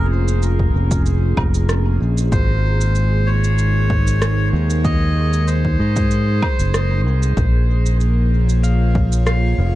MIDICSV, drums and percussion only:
0, 0, Header, 1, 2, 480
1, 0, Start_track
1, 0, Key_signature, -5, "minor"
1, 0, Tempo, 631579
1, 1763, Time_signature, 4, 2, 24, 8
1, 7412, End_track
2, 0, Start_track
2, 0, Title_t, "Drums"
2, 213, Note_on_c, 9, 82, 53
2, 289, Note_off_c, 9, 82, 0
2, 324, Note_on_c, 9, 82, 42
2, 400, Note_off_c, 9, 82, 0
2, 452, Note_on_c, 9, 36, 63
2, 528, Note_off_c, 9, 36, 0
2, 692, Note_on_c, 9, 36, 108
2, 692, Note_on_c, 9, 82, 55
2, 768, Note_off_c, 9, 36, 0
2, 768, Note_off_c, 9, 82, 0
2, 805, Note_on_c, 9, 82, 45
2, 881, Note_off_c, 9, 82, 0
2, 1042, Note_on_c, 9, 36, 108
2, 1044, Note_on_c, 9, 77, 80
2, 1118, Note_off_c, 9, 36, 0
2, 1120, Note_off_c, 9, 77, 0
2, 1173, Note_on_c, 9, 82, 55
2, 1249, Note_off_c, 9, 82, 0
2, 1285, Note_on_c, 9, 37, 92
2, 1285, Note_on_c, 9, 82, 44
2, 1361, Note_off_c, 9, 37, 0
2, 1361, Note_off_c, 9, 82, 0
2, 1654, Note_on_c, 9, 82, 53
2, 1730, Note_off_c, 9, 82, 0
2, 1764, Note_on_c, 9, 36, 127
2, 1766, Note_on_c, 9, 82, 42
2, 1840, Note_off_c, 9, 36, 0
2, 1842, Note_off_c, 9, 82, 0
2, 2135, Note_on_c, 9, 82, 53
2, 2211, Note_off_c, 9, 82, 0
2, 2244, Note_on_c, 9, 82, 43
2, 2320, Note_off_c, 9, 82, 0
2, 2614, Note_on_c, 9, 82, 54
2, 2690, Note_off_c, 9, 82, 0
2, 2724, Note_on_c, 9, 82, 42
2, 2800, Note_off_c, 9, 82, 0
2, 2964, Note_on_c, 9, 36, 109
2, 3040, Note_off_c, 9, 36, 0
2, 3094, Note_on_c, 9, 82, 55
2, 3170, Note_off_c, 9, 82, 0
2, 3205, Note_on_c, 9, 37, 96
2, 3205, Note_on_c, 9, 82, 43
2, 3281, Note_off_c, 9, 37, 0
2, 3281, Note_off_c, 9, 82, 0
2, 3573, Note_on_c, 9, 82, 53
2, 3649, Note_off_c, 9, 82, 0
2, 3683, Note_on_c, 9, 36, 118
2, 3683, Note_on_c, 9, 82, 40
2, 3759, Note_off_c, 9, 36, 0
2, 3759, Note_off_c, 9, 82, 0
2, 4052, Note_on_c, 9, 82, 52
2, 4128, Note_off_c, 9, 82, 0
2, 4163, Note_on_c, 9, 82, 42
2, 4239, Note_off_c, 9, 82, 0
2, 4292, Note_on_c, 9, 36, 62
2, 4368, Note_off_c, 9, 36, 0
2, 4531, Note_on_c, 9, 82, 53
2, 4532, Note_on_c, 9, 36, 106
2, 4607, Note_off_c, 9, 82, 0
2, 4608, Note_off_c, 9, 36, 0
2, 4643, Note_on_c, 9, 82, 42
2, 4719, Note_off_c, 9, 82, 0
2, 4882, Note_on_c, 9, 36, 108
2, 4883, Note_on_c, 9, 77, 72
2, 4958, Note_off_c, 9, 36, 0
2, 4959, Note_off_c, 9, 77, 0
2, 5012, Note_on_c, 9, 82, 55
2, 5088, Note_off_c, 9, 82, 0
2, 5124, Note_on_c, 9, 37, 97
2, 5124, Note_on_c, 9, 82, 43
2, 5200, Note_off_c, 9, 37, 0
2, 5200, Note_off_c, 9, 82, 0
2, 5492, Note_on_c, 9, 82, 50
2, 5568, Note_off_c, 9, 82, 0
2, 5602, Note_on_c, 9, 36, 116
2, 5603, Note_on_c, 9, 82, 40
2, 5678, Note_off_c, 9, 36, 0
2, 5679, Note_off_c, 9, 82, 0
2, 5973, Note_on_c, 9, 82, 52
2, 6049, Note_off_c, 9, 82, 0
2, 6084, Note_on_c, 9, 82, 41
2, 6160, Note_off_c, 9, 82, 0
2, 6453, Note_on_c, 9, 82, 51
2, 6529, Note_off_c, 9, 82, 0
2, 6565, Note_on_c, 9, 82, 40
2, 6641, Note_off_c, 9, 82, 0
2, 6803, Note_on_c, 9, 36, 102
2, 6879, Note_off_c, 9, 36, 0
2, 6933, Note_on_c, 9, 82, 53
2, 7009, Note_off_c, 9, 82, 0
2, 7042, Note_on_c, 9, 37, 93
2, 7042, Note_on_c, 9, 82, 41
2, 7118, Note_off_c, 9, 37, 0
2, 7118, Note_off_c, 9, 82, 0
2, 7412, End_track
0, 0, End_of_file